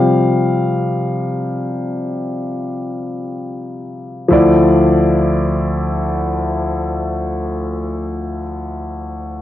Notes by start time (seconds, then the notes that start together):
Already playing: C3 F3 G3 F5
4.28 D2 F3 E4
4.33 D5